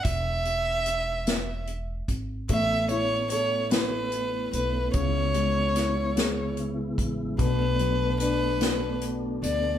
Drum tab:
HH |xxxxxx|xxxxxx|xxxxxx|xxxxxx|
SD |---o--|---o--|--oo--|---o--|
BD |o----o|o-----|o----o|o-----|